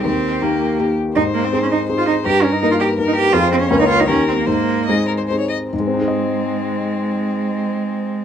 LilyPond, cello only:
\new Staff \with { instrumentName = "Cello" } { \time 3/4 \key aes \major \tempo 4 = 160 c'4 bes4 r4 | ees'8 bes16 c'16 c'16 des'16 ees'8. f'16 ees'8 | g'8 des'16 ees'16 ees'16 f'16 g'8. ees'16 g'8 | f'8 c'16 des'16 des'16 ees'16 f'16 ees'16 des'8 c'16 bes16 |
bes4 aes4 r4 | aes2.~ | aes2. | }